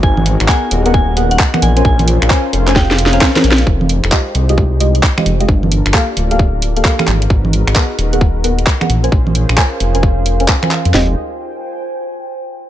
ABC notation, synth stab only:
X:1
M:4/4
L:1/16
Q:"Swing 16ths" 1/4=132
K:Bbmix
V:1 name="Synth stab"
z4 [_CAB_g] z2 [CABg] z2 [CABg] z2 [CABg] z [_DB=ca] | z4 [_DBca] z2 [DBca] z3 [DBca] [DBca] [DBca] z2 | z4 [A,FGe] z2 [A,FGe] z2 [A,FGe] z2 [A,FGe] z [A,FGe] | z4 [B,G=Af] z2 [B,GAf] z3 [B,GAf] [B,GAf] [B,GAf] z2 |
z4 [_CAB_g] z2 [CABg] z2 [CABg] z2 [CABg] z [_DB=ca] | z4 [_DBca] z2 [DBca] z3 [DBca] [DBc] [DBca] z2 | [A,FGe]2 z12 z2 |]